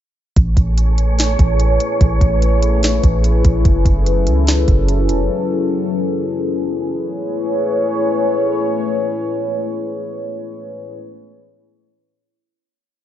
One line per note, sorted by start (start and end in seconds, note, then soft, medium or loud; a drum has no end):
0.36 0.56 A1 loud
0.36 3.62 A3 medium
0.36 6.90 E4 medium
0.36 6.90 G#4 medium
0.36 3.62 G#4 medium
0.36 6.90 B4 medium
0.36 3.62 C#5 medium
0.36 kick loud
0.36 closed hi-hat medium
0.57 1.36 A1 loud
0.57 kick loud
0.57 closed hi-hat medium
0.78 closed hi-hat medium
0.98 closed hi-hat medium
1.19 snare loud
1.19 closed hi-hat medium
1.39 1.79 A1 loud
1.39 kick loud
1.39 closed hi-hat medium
1.60 closed hi-hat medium
1.80 closed hi-hat medium
2.01 2.21 A1 loud
2.01 kick loud
2.01 closed hi-hat medium
2.21 3.00 A1 loud
2.21 kick loud
2.21 closed hi-hat medium
2.42 closed hi-hat medium
2.62 closed hi-hat medium
2.83 snare loud
2.83 closed hi-hat medium
3.03 3.43 A1 loud
3.03 kick loud
3.03 closed hi-hat medium
3.24 closed hi-hat medium
3.45 3.64 A1 loud
3.45 kick loud
3.45 closed hi-hat medium
3.65 3.85 F#1 loud
3.65 6.91 F#3 medium
3.65 6.91 C#4 medium
3.65 6.91 A4 medium
3.65 kick loud
3.65 closed hi-hat medium
3.85 4.28 F#1 loud
3.85 kick loud
3.85 closed hi-hat medium
4.06 closed hi-hat medium
4.27 4.66 C#2 loud
4.27 closed hi-hat medium
4.47 snare loud
4.47 closed hi-hat medium
4.68 5.11 F#1 loud
4.68 kick loud
4.68 closed hi-hat medium
4.89 closed hi-hat medium
5.09 5.21 E1 loud
5.09 closed hi-hat medium
5.19 5.29 F#1 loud
6.94 10.99 A3 medium
6.94 10.99 E4 medium
6.94 10.99 G#4 medium
6.94 10.99 B4 medium
6.94 10.99 C#5 medium